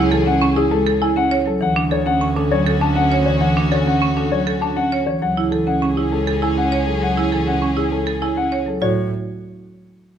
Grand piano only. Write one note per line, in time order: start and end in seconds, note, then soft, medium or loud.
0.12 0.31 A4 medium
0.27 0.46 F#5 medium
0.57 0.76 G#4 medium
0.71 0.91 A4 medium
1.02 1.21 G#5 medium
1.17 1.36 F#5 medium
1.47 1.66 A4 medium
1.62 1.81 F#5 medium
1.92 2.11 C#5 medium
2.06 2.26 F#5 medium
2.36 2.56 A4 medium
2.52 2.71 C#5 medium
2.81 3.01 A5 medium
2.96 3.16 F#5 medium
3.26 3.46 C#5 medium
3.41 3.61 F#5 medium
3.72 3.91 C#5 medium
3.87 4.06 F#5 medium
4.17 4.36 A4 medium
4.32 4.51 C#5 medium
4.61 4.81 A5 medium
4.76 4.96 F#5 medium
5.06 5.26 C#5 medium
5.22 5.41 F#5 medium
5.51 5.71 A4 medium
5.67 5.86 F#5 medium
5.97 6.16 G#4 medium
6.12 6.31 A4 medium
6.43 6.62 G#5 medium
6.58 6.76 F#5 medium
6.87 7.06 A4 medium
7.03 7.21 F#5 medium
7.32 7.51 A4 medium
7.47 7.66 F#5 medium
7.77 7.96 G#4 medium
7.92 8.11 A4 medium
8.22 8.41 G#5 medium
8.37 8.56 F#5 medium
8.68 8.87 A4 medium
8.82 9.10 C#5 medium